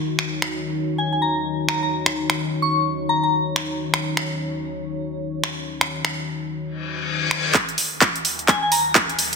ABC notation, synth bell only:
X:1
M:4/4
L:1/16
Q:"Swing 16ths" 1/4=128
K:Ebm
V:1 name="Synth bell"
z8 a a b z3 b b | z6 d' z3 b b z4 | z16 | z16 |
z8 a a b z4 z |]